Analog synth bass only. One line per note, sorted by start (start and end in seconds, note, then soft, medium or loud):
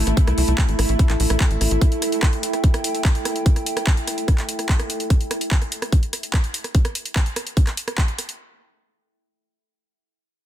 0.07 0.13 A1 medium
0.27 0.34 C2 medium
0.38 0.44 C2 loud
0.48 0.54 C2 medium
0.69 0.75 A1 medium
0.79 0.85 A1 loud
0.89 0.96 A1 medium
1.10 1.16 A#1 medium
1.20 1.26 A#1 loud
1.30 1.37 A#1 medium
1.51 1.57 A1 medium
1.61 1.67 A1 medium
1.71 1.78 A1 medium